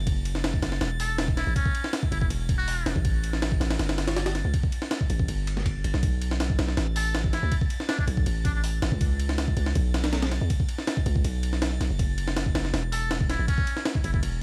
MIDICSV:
0, 0, Header, 1, 5, 480
1, 0, Start_track
1, 0, Tempo, 372671
1, 85, Time_signature, 4, 2, 24, 8
1, 18581, End_track
2, 0, Start_track
2, 0, Title_t, "Synth texture"
2, 0, Program_c, 0, 99
2, 0, Note_on_c, 0, 93, 84
2, 7753, Note_off_c, 0, 93, 0
2, 7768, Note_on_c, 0, 93, 83
2, 18581, Note_off_c, 0, 93, 0
2, 18581, End_track
3, 0, Start_track
3, 0, Title_t, "Muted trumpet"
3, 0, Program_c, 1, 59
3, 1286, Note_on_c, 1, 69, 95
3, 1575, Note_off_c, 1, 69, 0
3, 1764, Note_on_c, 1, 64, 96
3, 1998, Note_off_c, 1, 64, 0
3, 2006, Note_on_c, 1, 61, 97
3, 2485, Note_off_c, 1, 61, 0
3, 2721, Note_on_c, 1, 64, 89
3, 2802, Note_off_c, 1, 64, 0
3, 2844, Note_on_c, 1, 64, 77
3, 2921, Note_off_c, 1, 64, 0
3, 3321, Note_on_c, 1, 66, 96
3, 3805, Note_off_c, 1, 66, 0
3, 8964, Note_on_c, 1, 69, 96
3, 9254, Note_off_c, 1, 69, 0
3, 9439, Note_on_c, 1, 64, 98
3, 9732, Note_off_c, 1, 64, 0
3, 10154, Note_on_c, 1, 62, 89
3, 10239, Note_off_c, 1, 62, 0
3, 10290, Note_on_c, 1, 62, 77
3, 10364, Note_off_c, 1, 62, 0
3, 10880, Note_on_c, 1, 62, 92
3, 10962, Note_off_c, 1, 62, 0
3, 11006, Note_on_c, 1, 62, 79
3, 11082, Note_off_c, 1, 62, 0
3, 16641, Note_on_c, 1, 69, 99
3, 16933, Note_off_c, 1, 69, 0
3, 17119, Note_on_c, 1, 64, 95
3, 17347, Note_off_c, 1, 64, 0
3, 17354, Note_on_c, 1, 61, 100
3, 17840, Note_off_c, 1, 61, 0
3, 18079, Note_on_c, 1, 64, 90
3, 18161, Note_off_c, 1, 64, 0
3, 18199, Note_on_c, 1, 64, 79
3, 18278, Note_off_c, 1, 64, 0
3, 18581, End_track
4, 0, Start_track
4, 0, Title_t, "808-style bass"
4, 0, Program_c, 2, 38
4, 0, Note_on_c, 2, 30, 85
4, 788, Note_off_c, 2, 30, 0
4, 807, Note_on_c, 2, 30, 99
4, 1023, Note_off_c, 2, 30, 0
4, 1045, Note_on_c, 2, 28, 105
4, 1870, Note_off_c, 2, 28, 0
4, 1892, Note_on_c, 2, 33, 93
4, 1995, Note_off_c, 2, 33, 0
4, 2726, Note_on_c, 2, 30, 100
4, 2943, Note_off_c, 2, 30, 0
4, 2967, Note_on_c, 2, 28, 93
4, 3667, Note_off_c, 2, 28, 0
4, 3684, Note_on_c, 2, 28, 80
4, 3796, Note_off_c, 2, 28, 0
4, 3811, Note_on_c, 2, 33, 86
4, 4628, Note_off_c, 2, 33, 0
4, 4640, Note_on_c, 2, 33, 99
4, 4859, Note_off_c, 2, 33, 0
4, 4886, Note_on_c, 2, 31, 108
4, 5709, Note_off_c, 2, 31, 0
4, 5729, Note_on_c, 2, 37, 92
4, 5833, Note_off_c, 2, 37, 0
4, 6568, Note_on_c, 2, 33, 101
4, 6783, Note_off_c, 2, 33, 0
4, 6807, Note_on_c, 2, 31, 93
4, 7507, Note_off_c, 2, 31, 0
4, 7527, Note_on_c, 2, 31, 81
4, 7638, Note_off_c, 2, 31, 0
4, 7654, Note_on_c, 2, 35, 85
4, 8469, Note_off_c, 2, 35, 0
4, 8489, Note_on_c, 2, 35, 100
4, 8704, Note_off_c, 2, 35, 0
4, 8725, Note_on_c, 2, 33, 107
4, 9549, Note_off_c, 2, 33, 0
4, 9568, Note_on_c, 2, 38, 93
4, 9673, Note_off_c, 2, 38, 0
4, 10401, Note_on_c, 2, 35, 100
4, 10620, Note_off_c, 2, 35, 0
4, 10645, Note_on_c, 2, 33, 92
4, 11346, Note_off_c, 2, 33, 0
4, 11366, Note_on_c, 2, 33, 83
4, 11477, Note_off_c, 2, 33, 0
4, 11487, Note_on_c, 2, 37, 86
4, 12306, Note_off_c, 2, 37, 0
4, 12323, Note_on_c, 2, 37, 100
4, 12541, Note_off_c, 2, 37, 0
4, 12566, Note_on_c, 2, 35, 108
4, 13390, Note_off_c, 2, 35, 0
4, 13411, Note_on_c, 2, 40, 90
4, 13515, Note_off_c, 2, 40, 0
4, 14246, Note_on_c, 2, 37, 102
4, 14462, Note_off_c, 2, 37, 0
4, 14484, Note_on_c, 2, 35, 91
4, 15186, Note_off_c, 2, 35, 0
4, 15206, Note_on_c, 2, 35, 78
4, 15317, Note_off_c, 2, 35, 0
4, 15331, Note_on_c, 2, 30, 86
4, 16148, Note_off_c, 2, 30, 0
4, 16162, Note_on_c, 2, 30, 101
4, 16380, Note_off_c, 2, 30, 0
4, 16401, Note_on_c, 2, 28, 107
4, 17227, Note_off_c, 2, 28, 0
4, 17248, Note_on_c, 2, 33, 91
4, 17353, Note_off_c, 2, 33, 0
4, 18087, Note_on_c, 2, 30, 100
4, 18303, Note_off_c, 2, 30, 0
4, 18325, Note_on_c, 2, 28, 92
4, 18581, Note_off_c, 2, 28, 0
4, 18581, End_track
5, 0, Start_track
5, 0, Title_t, "Drums"
5, 86, Note_on_c, 9, 36, 103
5, 87, Note_on_c, 9, 51, 84
5, 215, Note_off_c, 9, 36, 0
5, 216, Note_off_c, 9, 51, 0
5, 327, Note_on_c, 9, 51, 69
5, 451, Note_on_c, 9, 38, 56
5, 456, Note_off_c, 9, 51, 0
5, 567, Note_off_c, 9, 38, 0
5, 567, Note_on_c, 9, 38, 117
5, 567, Note_on_c, 9, 51, 86
5, 690, Note_on_c, 9, 36, 99
5, 696, Note_off_c, 9, 38, 0
5, 696, Note_off_c, 9, 51, 0
5, 805, Note_on_c, 9, 38, 106
5, 805, Note_on_c, 9, 51, 80
5, 819, Note_off_c, 9, 36, 0
5, 928, Note_off_c, 9, 38, 0
5, 928, Note_on_c, 9, 38, 58
5, 934, Note_off_c, 9, 51, 0
5, 1044, Note_off_c, 9, 38, 0
5, 1044, Note_on_c, 9, 38, 108
5, 1044, Note_on_c, 9, 51, 79
5, 1173, Note_off_c, 9, 38, 0
5, 1173, Note_off_c, 9, 51, 0
5, 1285, Note_on_c, 9, 46, 80
5, 1414, Note_off_c, 9, 46, 0
5, 1525, Note_on_c, 9, 38, 115
5, 1525, Note_on_c, 9, 51, 85
5, 1651, Note_on_c, 9, 36, 101
5, 1654, Note_off_c, 9, 38, 0
5, 1654, Note_off_c, 9, 51, 0
5, 1767, Note_on_c, 9, 38, 58
5, 1767, Note_on_c, 9, 51, 67
5, 1779, Note_off_c, 9, 36, 0
5, 1896, Note_off_c, 9, 38, 0
5, 1896, Note_off_c, 9, 51, 0
5, 2008, Note_on_c, 9, 36, 106
5, 2009, Note_on_c, 9, 51, 85
5, 2132, Note_off_c, 9, 36, 0
5, 2132, Note_on_c, 9, 36, 98
5, 2137, Note_off_c, 9, 51, 0
5, 2249, Note_on_c, 9, 51, 70
5, 2260, Note_off_c, 9, 36, 0
5, 2373, Note_on_c, 9, 38, 57
5, 2378, Note_off_c, 9, 51, 0
5, 2486, Note_off_c, 9, 38, 0
5, 2486, Note_on_c, 9, 38, 114
5, 2486, Note_on_c, 9, 51, 86
5, 2611, Note_on_c, 9, 36, 98
5, 2615, Note_off_c, 9, 38, 0
5, 2615, Note_off_c, 9, 51, 0
5, 2729, Note_on_c, 9, 51, 69
5, 2740, Note_off_c, 9, 36, 0
5, 2852, Note_on_c, 9, 36, 98
5, 2858, Note_off_c, 9, 51, 0
5, 2968, Note_on_c, 9, 51, 92
5, 2981, Note_off_c, 9, 36, 0
5, 3097, Note_off_c, 9, 51, 0
5, 3207, Note_on_c, 9, 36, 101
5, 3208, Note_on_c, 9, 51, 81
5, 3336, Note_off_c, 9, 36, 0
5, 3337, Note_off_c, 9, 51, 0
5, 3448, Note_on_c, 9, 46, 72
5, 3577, Note_off_c, 9, 46, 0
5, 3686, Note_on_c, 9, 38, 103
5, 3686, Note_on_c, 9, 51, 79
5, 3811, Note_on_c, 9, 36, 88
5, 3815, Note_off_c, 9, 38, 0
5, 3815, Note_off_c, 9, 51, 0
5, 3925, Note_on_c, 9, 51, 84
5, 3926, Note_off_c, 9, 36, 0
5, 3926, Note_on_c, 9, 36, 108
5, 4054, Note_off_c, 9, 51, 0
5, 4055, Note_off_c, 9, 36, 0
5, 4168, Note_on_c, 9, 51, 70
5, 4292, Note_on_c, 9, 38, 58
5, 4297, Note_off_c, 9, 51, 0
5, 4407, Note_off_c, 9, 38, 0
5, 4407, Note_on_c, 9, 38, 114
5, 4407, Note_on_c, 9, 51, 87
5, 4531, Note_on_c, 9, 36, 100
5, 4536, Note_off_c, 9, 38, 0
5, 4536, Note_off_c, 9, 51, 0
5, 4648, Note_on_c, 9, 38, 104
5, 4648, Note_on_c, 9, 51, 81
5, 4659, Note_off_c, 9, 36, 0
5, 4771, Note_off_c, 9, 38, 0
5, 4771, Note_off_c, 9, 51, 0
5, 4771, Note_on_c, 9, 38, 106
5, 4771, Note_on_c, 9, 51, 84
5, 4886, Note_off_c, 9, 38, 0
5, 4886, Note_off_c, 9, 51, 0
5, 4886, Note_on_c, 9, 38, 103
5, 4886, Note_on_c, 9, 51, 80
5, 5012, Note_off_c, 9, 38, 0
5, 5012, Note_off_c, 9, 51, 0
5, 5012, Note_on_c, 9, 38, 104
5, 5012, Note_on_c, 9, 51, 79
5, 5127, Note_off_c, 9, 38, 0
5, 5127, Note_off_c, 9, 51, 0
5, 5127, Note_on_c, 9, 38, 105
5, 5127, Note_on_c, 9, 51, 78
5, 5249, Note_off_c, 9, 38, 0
5, 5249, Note_off_c, 9, 51, 0
5, 5249, Note_on_c, 9, 38, 110
5, 5249, Note_on_c, 9, 51, 84
5, 5365, Note_off_c, 9, 38, 0
5, 5365, Note_off_c, 9, 51, 0
5, 5365, Note_on_c, 9, 38, 107
5, 5365, Note_on_c, 9, 51, 79
5, 5487, Note_off_c, 9, 38, 0
5, 5487, Note_off_c, 9, 51, 0
5, 5487, Note_on_c, 9, 38, 107
5, 5487, Note_on_c, 9, 51, 84
5, 5603, Note_off_c, 9, 38, 0
5, 5603, Note_off_c, 9, 51, 0
5, 5603, Note_on_c, 9, 38, 55
5, 5603, Note_on_c, 9, 51, 66
5, 5732, Note_off_c, 9, 38, 0
5, 5732, Note_off_c, 9, 51, 0
5, 5844, Note_on_c, 9, 36, 108
5, 5844, Note_on_c, 9, 51, 83
5, 5968, Note_off_c, 9, 36, 0
5, 5968, Note_on_c, 9, 36, 103
5, 5973, Note_off_c, 9, 51, 0
5, 6083, Note_on_c, 9, 51, 69
5, 6097, Note_off_c, 9, 36, 0
5, 6206, Note_on_c, 9, 38, 58
5, 6212, Note_off_c, 9, 51, 0
5, 6323, Note_off_c, 9, 38, 0
5, 6323, Note_on_c, 9, 38, 115
5, 6323, Note_on_c, 9, 51, 86
5, 6449, Note_on_c, 9, 36, 95
5, 6452, Note_off_c, 9, 38, 0
5, 6452, Note_off_c, 9, 51, 0
5, 6565, Note_on_c, 9, 51, 70
5, 6578, Note_off_c, 9, 36, 0
5, 6690, Note_on_c, 9, 36, 98
5, 6694, Note_off_c, 9, 51, 0
5, 6805, Note_on_c, 9, 51, 88
5, 6819, Note_off_c, 9, 36, 0
5, 6934, Note_off_c, 9, 51, 0
5, 7049, Note_on_c, 9, 51, 68
5, 7173, Note_on_c, 9, 38, 47
5, 7178, Note_off_c, 9, 51, 0
5, 7286, Note_on_c, 9, 51, 78
5, 7287, Note_on_c, 9, 36, 100
5, 7302, Note_off_c, 9, 38, 0
5, 7415, Note_off_c, 9, 36, 0
5, 7415, Note_off_c, 9, 51, 0
5, 7527, Note_on_c, 9, 51, 61
5, 7649, Note_on_c, 9, 38, 50
5, 7655, Note_off_c, 9, 51, 0
5, 7765, Note_on_c, 9, 36, 104
5, 7765, Note_on_c, 9, 51, 85
5, 7778, Note_off_c, 9, 38, 0
5, 7894, Note_off_c, 9, 36, 0
5, 7894, Note_off_c, 9, 51, 0
5, 8006, Note_on_c, 9, 51, 70
5, 8132, Note_on_c, 9, 38, 57
5, 8134, Note_off_c, 9, 51, 0
5, 8245, Note_off_c, 9, 38, 0
5, 8245, Note_on_c, 9, 38, 114
5, 8245, Note_on_c, 9, 51, 88
5, 8369, Note_on_c, 9, 36, 97
5, 8374, Note_off_c, 9, 38, 0
5, 8374, Note_off_c, 9, 51, 0
5, 8484, Note_on_c, 9, 38, 106
5, 8484, Note_on_c, 9, 51, 80
5, 8498, Note_off_c, 9, 36, 0
5, 8609, Note_off_c, 9, 38, 0
5, 8609, Note_on_c, 9, 38, 58
5, 8613, Note_off_c, 9, 51, 0
5, 8722, Note_off_c, 9, 38, 0
5, 8722, Note_on_c, 9, 38, 105
5, 8722, Note_on_c, 9, 51, 79
5, 8851, Note_off_c, 9, 38, 0
5, 8851, Note_off_c, 9, 51, 0
5, 8963, Note_on_c, 9, 46, 81
5, 9091, Note_off_c, 9, 46, 0
5, 9203, Note_on_c, 9, 38, 116
5, 9203, Note_on_c, 9, 51, 89
5, 9327, Note_on_c, 9, 36, 100
5, 9332, Note_off_c, 9, 38, 0
5, 9332, Note_off_c, 9, 51, 0
5, 9442, Note_on_c, 9, 38, 57
5, 9442, Note_on_c, 9, 51, 68
5, 9456, Note_off_c, 9, 36, 0
5, 9571, Note_off_c, 9, 38, 0
5, 9571, Note_off_c, 9, 51, 0
5, 9681, Note_on_c, 9, 51, 83
5, 9683, Note_on_c, 9, 36, 105
5, 9806, Note_off_c, 9, 36, 0
5, 9806, Note_on_c, 9, 36, 103
5, 9810, Note_off_c, 9, 51, 0
5, 9920, Note_on_c, 9, 51, 73
5, 9935, Note_off_c, 9, 36, 0
5, 10047, Note_on_c, 9, 38, 56
5, 10049, Note_off_c, 9, 51, 0
5, 10160, Note_off_c, 9, 38, 0
5, 10160, Note_on_c, 9, 38, 117
5, 10160, Note_on_c, 9, 51, 87
5, 10286, Note_on_c, 9, 36, 99
5, 10289, Note_off_c, 9, 38, 0
5, 10289, Note_off_c, 9, 51, 0
5, 10401, Note_on_c, 9, 51, 72
5, 10415, Note_off_c, 9, 36, 0
5, 10527, Note_on_c, 9, 36, 97
5, 10530, Note_off_c, 9, 51, 0
5, 10641, Note_on_c, 9, 51, 88
5, 10655, Note_off_c, 9, 36, 0
5, 10770, Note_off_c, 9, 51, 0
5, 10883, Note_on_c, 9, 36, 99
5, 10883, Note_on_c, 9, 51, 78
5, 11011, Note_off_c, 9, 51, 0
5, 11012, Note_off_c, 9, 36, 0
5, 11123, Note_on_c, 9, 46, 75
5, 11252, Note_off_c, 9, 46, 0
5, 11364, Note_on_c, 9, 38, 103
5, 11364, Note_on_c, 9, 51, 81
5, 11488, Note_on_c, 9, 36, 89
5, 11492, Note_off_c, 9, 38, 0
5, 11492, Note_off_c, 9, 51, 0
5, 11602, Note_on_c, 9, 51, 87
5, 11604, Note_off_c, 9, 36, 0
5, 11604, Note_on_c, 9, 36, 106
5, 11730, Note_off_c, 9, 51, 0
5, 11732, Note_off_c, 9, 36, 0
5, 11843, Note_on_c, 9, 51, 72
5, 11968, Note_on_c, 9, 38, 57
5, 11972, Note_off_c, 9, 51, 0
5, 12083, Note_off_c, 9, 38, 0
5, 12083, Note_on_c, 9, 38, 115
5, 12083, Note_on_c, 9, 51, 87
5, 12208, Note_on_c, 9, 36, 96
5, 12212, Note_off_c, 9, 38, 0
5, 12212, Note_off_c, 9, 51, 0
5, 12322, Note_on_c, 9, 51, 69
5, 12337, Note_off_c, 9, 36, 0
5, 12447, Note_on_c, 9, 38, 58
5, 12451, Note_off_c, 9, 51, 0
5, 12563, Note_on_c, 9, 51, 87
5, 12565, Note_on_c, 9, 36, 113
5, 12576, Note_off_c, 9, 38, 0
5, 12692, Note_off_c, 9, 51, 0
5, 12693, Note_off_c, 9, 36, 0
5, 12806, Note_on_c, 9, 38, 101
5, 12806, Note_on_c, 9, 51, 79
5, 12928, Note_off_c, 9, 38, 0
5, 12928, Note_off_c, 9, 51, 0
5, 12928, Note_on_c, 9, 38, 107
5, 12928, Note_on_c, 9, 51, 81
5, 13044, Note_off_c, 9, 38, 0
5, 13044, Note_off_c, 9, 51, 0
5, 13044, Note_on_c, 9, 38, 105
5, 13044, Note_on_c, 9, 51, 80
5, 13169, Note_off_c, 9, 38, 0
5, 13169, Note_off_c, 9, 51, 0
5, 13169, Note_on_c, 9, 38, 107
5, 13169, Note_on_c, 9, 51, 82
5, 13286, Note_off_c, 9, 38, 0
5, 13286, Note_off_c, 9, 51, 0
5, 13286, Note_on_c, 9, 38, 55
5, 13286, Note_on_c, 9, 51, 68
5, 13415, Note_off_c, 9, 38, 0
5, 13415, Note_off_c, 9, 51, 0
5, 13525, Note_on_c, 9, 36, 109
5, 13525, Note_on_c, 9, 51, 84
5, 13650, Note_off_c, 9, 36, 0
5, 13650, Note_on_c, 9, 36, 97
5, 13653, Note_off_c, 9, 51, 0
5, 13763, Note_on_c, 9, 51, 71
5, 13778, Note_off_c, 9, 36, 0
5, 13890, Note_on_c, 9, 38, 56
5, 13892, Note_off_c, 9, 51, 0
5, 14005, Note_off_c, 9, 38, 0
5, 14005, Note_on_c, 9, 38, 115
5, 14005, Note_on_c, 9, 51, 88
5, 14129, Note_on_c, 9, 36, 99
5, 14134, Note_off_c, 9, 38, 0
5, 14134, Note_off_c, 9, 51, 0
5, 14244, Note_on_c, 9, 51, 70
5, 14258, Note_off_c, 9, 36, 0
5, 14369, Note_on_c, 9, 36, 97
5, 14373, Note_off_c, 9, 51, 0
5, 14483, Note_on_c, 9, 51, 89
5, 14498, Note_off_c, 9, 36, 0
5, 14612, Note_off_c, 9, 51, 0
5, 14724, Note_on_c, 9, 51, 68
5, 14849, Note_on_c, 9, 38, 48
5, 14852, Note_off_c, 9, 51, 0
5, 14965, Note_off_c, 9, 38, 0
5, 14965, Note_on_c, 9, 38, 116
5, 14965, Note_on_c, 9, 51, 89
5, 15094, Note_off_c, 9, 38, 0
5, 15094, Note_off_c, 9, 51, 0
5, 15208, Note_on_c, 9, 38, 54
5, 15208, Note_on_c, 9, 51, 69
5, 15336, Note_off_c, 9, 38, 0
5, 15336, Note_off_c, 9, 51, 0
5, 15447, Note_on_c, 9, 36, 104
5, 15447, Note_on_c, 9, 51, 83
5, 15575, Note_off_c, 9, 36, 0
5, 15576, Note_off_c, 9, 51, 0
5, 15686, Note_on_c, 9, 51, 72
5, 15810, Note_on_c, 9, 38, 59
5, 15815, Note_off_c, 9, 51, 0
5, 15926, Note_off_c, 9, 38, 0
5, 15926, Note_on_c, 9, 38, 114
5, 15926, Note_on_c, 9, 51, 86
5, 16049, Note_on_c, 9, 36, 97
5, 16054, Note_off_c, 9, 38, 0
5, 16054, Note_off_c, 9, 51, 0
5, 16165, Note_on_c, 9, 38, 105
5, 16165, Note_on_c, 9, 51, 79
5, 16178, Note_off_c, 9, 36, 0
5, 16289, Note_off_c, 9, 38, 0
5, 16289, Note_on_c, 9, 38, 57
5, 16293, Note_off_c, 9, 51, 0
5, 16404, Note_off_c, 9, 38, 0
5, 16404, Note_on_c, 9, 38, 106
5, 16404, Note_on_c, 9, 51, 81
5, 16533, Note_off_c, 9, 38, 0
5, 16533, Note_off_c, 9, 51, 0
5, 16645, Note_on_c, 9, 46, 81
5, 16774, Note_off_c, 9, 46, 0
5, 16883, Note_on_c, 9, 38, 115
5, 16883, Note_on_c, 9, 51, 87
5, 17009, Note_on_c, 9, 36, 102
5, 17012, Note_off_c, 9, 38, 0
5, 17012, Note_off_c, 9, 51, 0
5, 17125, Note_on_c, 9, 38, 57
5, 17125, Note_on_c, 9, 51, 69
5, 17137, Note_off_c, 9, 36, 0
5, 17254, Note_off_c, 9, 38, 0
5, 17254, Note_off_c, 9, 51, 0
5, 17365, Note_on_c, 9, 36, 110
5, 17366, Note_on_c, 9, 51, 87
5, 17490, Note_off_c, 9, 36, 0
5, 17490, Note_on_c, 9, 36, 99
5, 17495, Note_off_c, 9, 51, 0
5, 17608, Note_on_c, 9, 51, 71
5, 17619, Note_off_c, 9, 36, 0
5, 17730, Note_on_c, 9, 38, 55
5, 17737, Note_off_c, 9, 51, 0
5, 17844, Note_off_c, 9, 38, 0
5, 17844, Note_on_c, 9, 38, 119
5, 17844, Note_on_c, 9, 51, 88
5, 17969, Note_on_c, 9, 36, 99
5, 17973, Note_off_c, 9, 38, 0
5, 17973, Note_off_c, 9, 51, 0
5, 18084, Note_on_c, 9, 51, 69
5, 18098, Note_off_c, 9, 36, 0
5, 18209, Note_on_c, 9, 36, 97
5, 18213, Note_off_c, 9, 51, 0
5, 18325, Note_on_c, 9, 51, 92
5, 18338, Note_off_c, 9, 36, 0
5, 18454, Note_off_c, 9, 51, 0
5, 18581, End_track
0, 0, End_of_file